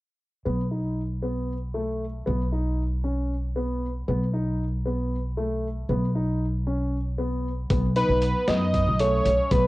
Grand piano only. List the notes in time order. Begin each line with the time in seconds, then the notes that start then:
0.45 B3
0.71 D#4
1.22 B3
1.74 A3
2.26 B3
2.52 D#4
3.04 C#4
3.56 B3
4.08 B3
4.34 D#4
4.86 B3
5.37 A3
5.89 B3
6.15 D#4
6.67 C#4
7.18 B3
7.70 B3
7.96 D#4
8.48 B3
9.00 A3
9.51 B3